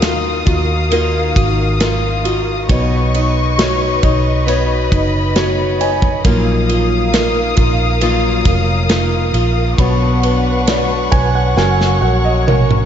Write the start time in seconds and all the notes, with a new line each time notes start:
Already playing: D#2 D#3 F#4 A#4 F5 D#6
0.00 A#3 D#4 F4 F#4 A#4, snare, ride
0.46 D#2 D#4 F4 F#4, kick, ride
0.91 D#3 A#3 D#4 F4 F#4 A#4, ride
1.36 G#1 F#4, kick, ride
1.80 A#3 D#4 F4 F#4 A#4, snare, ride
2.24 D#4 F4 F#4, ride
2.68 B1 B2 B3 D#4 F#4 B4 C#5 D#5 C#6, kick, ride
3.14 D#4, ride
3.57 B3 D#4 F#4 C#5, snare, ride
4.02 B1 D#4 F#4 C#5, kick, ride
4.46 B3 D#4 F#4 B4 C#5 B5, ride
4.92 F#1 D#4, kick, ride
5.35 B3 D#4 F#4 C#5, snare, ride
5.79 D#4 F#4 C#5 G#5, ride
6.02 kick
6.24 A#1 A#2 F#3 A#3 D#4 F4 A#4 F5 D#6, kick, ride
6.69 F4, ride
7.12 A#3 D#4 F4 A#4, snare, ride
7.56 A#1 A#3 D#4 F4 A#4, kick, ride
8.01 A#2 F#3 A#3 D#4 F4 A#4, ride
8.45 F1 F4, kick, ride
8.89 A#3 D#4 F4 A#4, snare, ride
9.33 A#1 F4, ride
9.77 B1 B2 F#3 B3 D4 F#4 B4 C#5 F#5 C#6, kick, ride
10.23 B4, ride
10.67 B3 D4 F#4 C#5 D5, snare, ride
11.11 B1 B3 D4 F#4 B4 C#5 G#5, kick, ride
11.35 F#5
11.56 F#1 F#3 A#3 C#4 F#4 A#4 C#5 G#5, snare
11.81 snare
12.01 A#1 F#4 F#5
12.25 D#5
12.47 A#3 C#4 F#4 A#4 C#5, mid tom
12.71 mid tom